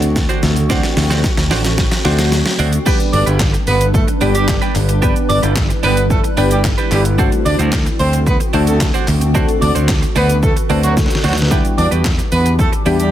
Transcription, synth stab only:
0.00 0.47 A3 medium
0.00 0.47 C4 medium
0.00 0.47 D4 medium
0.00 0.47 F#4 medium
0.70 1.48 A3 medium
0.70 1.48 C4 medium
0.70 1.48 D4 medium
0.70 1.48 F#4 medium
2.05 2.63 A3 medium
2.05 2.63 C4 medium
2.05 2.64 D4 medium
2.05 2.64 F#4 loud
2.86 3.64 G3 medium
2.86 3.64 B3 medium
2.86 3.64 D4 medium
2.86 3.64 G4 medium
2.86 3.64 B4 loud
4.21 4.80 G3 medium
4.21 4.80 B3 medium
4.21 4.80 D4 medium
4.21 4.80 G4 medium
4.21 4.80 D5 medium
5.02 5.80 G3 medium
5.02 5.80 B3 medium
5.02 5.80 D4 medium
5.02 5.80 G4 medium
5.02 5.80 B4 loud
6.37 6.96 G3 medium
6.37 6.96 B3 medium
6.37 6.96 D4 medium
6.37 6.96 G4 medium
6.37 6.96 B4 medium
7.18 7.96 A3 medium
7.18 7.96 C4 medium
7.18 7.96 D4 medium
7.18 7.96 F#4 medium
7.18 7.97 A4 loud
8.53 9.12 A3 medium
8.53 9.12 C4 medium
8.53 9.12 D4 medium
8.53 9.12 F#4 medium
8.53 9.12 A4 medium
9.35 10.13 A3 medium
9.35 10.13 C4 medium
9.35 10.13 D4 medium
9.35 10.13 F#4 medium
9.35 10.13 A4 loud
10.70 11.28 A3 medium
10.70 11.28 C4 medium
10.70 11.28 D4 medium
10.70 11.28 F#4 medium
10.70 11.28 A4 medium
11.51 12.29 G3 medium
11.51 12.29 B3 medium
11.51 12.29 D4 medium
11.51 12.29 E4 medium
11.51 12.29 G4 loud
12.86 13.11 G3 medium
12.86 13.11 B3 medium
12.86 13.11 D4 medium
12.86 13.11 E4 medium
12.86 13.11 G4 medium

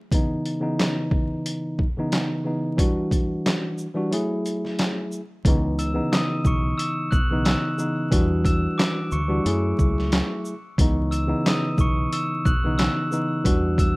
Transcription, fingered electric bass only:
5.45 5.99 C#2 loud
6.45 6.72 B1 medium
7.12 7.54 B1 medium
8.12 8.66 E2 loud
9.12 9.39 D2 medium
9.45 9.72 F#2 loud
9.79 10.21 C#2 medium
10.78 11.33 C#2 loud
11.78 12.05 B1 medium
12.46 12.87 B1 loud
13.45 13.96 E2 loud

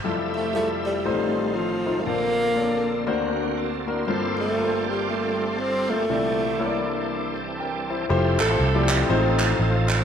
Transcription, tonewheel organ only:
0.05 1.03 F3 medium
0.05 1.03 A3 medium
0.05 1.03 G4 medium
0.05 1.03 E5 medium
1.04 2.04 A2 medium
1.04 2.04 D#3 medium
1.04 2.03 A3 medium
1.04 2.04 C4 soft
1.04 1.12 D#4 soft
1.11 2.07 F4 medium
2.06 3.05 D3 soft
2.06 3.05 A#3 soft
2.06 3.05 C4 soft
2.06 3.05 A4 medium
3.07 4.05 D3 medium
3.07 4.06 A#3 medium
3.07 3.56 C4 medium
3.07 3.14 E4 medium
3.13 3.59 F#4 medium
3.57 3.86 C4 soft
3.57 3.86 A4 medium
3.87 4.36 E4 soft
3.87 4.35 C5 soft
4.08 6.06 G3 medium
4.08 6.05 C4 medium
4.08 6.05 D4 medium
4.08 6.05 F4 soft
4.08 6.05 A4 medium
6.09 8.06 E3 medium
6.09 8.06 G3 soft
6.09 8.06 C4 soft
6.09 8.06 D4 soft
6.09 8.06 A4 medium
8.10 9.08 F3 medium
8.10 9.08 A3 medium
8.10 9.08 C4 medium
8.10 9.08 E4 medium
8.10 9.08 G4 medium
9.10 10.04 F3 medium
9.10 10.04 A3 medium
9.10 10.04 C4 medium
9.10 10.04 D#4 medium
9.10 10.04 A4 medium

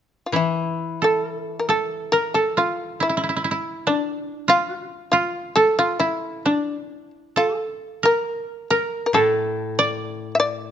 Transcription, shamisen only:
0.26 0.34 F4 soft
0.36 0.99 E4 soft
1.04 1.59 A4 medium
1.59 1.67 A#4 soft
1.70 2.10 A4 medium
2.12 2.33 A#4 medium
2.34 2.55 A4 medium
2.58 2.98 F4 medium
3.03 3.62 E4 medium
3.87 4.46 D4 medium
4.49 5.09 F4 medium
5.12 5.53 F4 medium
5.56 5.77 A4 medium
5.79 5.99 F4 medium
6.00 6.42 E4 medium
6.46 7.10 D4 medium
7.37 8.01 A4 medium
8.05 8.67 A#4 medium
8.70 9.05 A#4 medium
9.06 9.14 A#4 medium
9.14 9.74 A4 medium
9.79 10.31 D5 medium
10.35 10.39 E5 medium
10.40 10.71 D5 medium

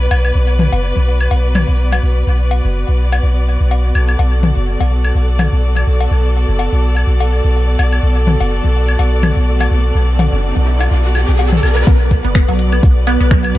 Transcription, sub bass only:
0.11 0.32 B1 medium
0.35 0.69 B1 loud
0.72 0.92 F#1 loud
0.96 1.28 B1 medium
1.31 1.65 B1 medium
1.68 2.00 B1 medium
2.03 2.24 B1 medium
2.27 2.61 B1 medium
2.65 2.84 F#1 loud
2.88 3.20 B1 medium
3.23 3.57 B1 medium
3.60 3.92 B1 medium
3.95 4.16 B1 medium
4.19 4.53 B1 loud
4.56 4.76 F#1 loud
4.81 5.12 B1 medium
5.15 5.49 B1 medium
5.53 5.85 B1 medium
5.87 6.08 B1 medium
6.11 6.45 B1 loud
6.49 6.68 F#1 loud
6.72 7.04 B1 medium
7.07 7.41 B1 medium
7.44 7.76 B1 medium
7.79 8.00 B1 medium
8.03 8.37 B1 loud
8.40 8.60 F#1 loud
8.64 8.96 B1 medium
8.99 9.33 B1 medium
9.36 9.68 B1 medium
9.71 9.92 B1 medium
9.95 10.29 B1 loud
10.32 10.52 F#1 loud
10.56 10.88 B1 medium
10.91 11.25 B1 medium
11.28 11.60 B1 medium
11.63 11.84 B1 medium
11.87 12.21 B1 loud
12.24 12.44 F#1 loud
12.48 12.80 B1 medium
12.83 13.17 B1 medium
13.20 13.52 B1 medium
13.55 13.58 B1 medium

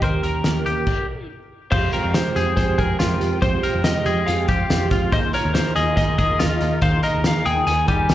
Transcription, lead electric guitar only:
0.04 1.27 A#4 medium
1.72 2.16 F5 medium
2.15 2.55 C5 medium
2.57 2.79 C5 medium
2.79 3.39 A#4 medium
3.42 3.84 C5 loud
3.84 4.28 D#5 loud
4.26 4.87 F5 medium
5.13 5.19 D#5 loud
5.34 5.53 C#5 medium
5.54 5.75 C5 medium
5.76 5.95 D#5 medium
5.97 6.78 D#5 loud
6.82 7.02 F5 loud
7.04 7.25 D#5 medium
7.26 7.47 F5 medium
7.45 7.66 G5 loud
7.67 7.87 G#5 loud
7.88 8.14 G#5 loud

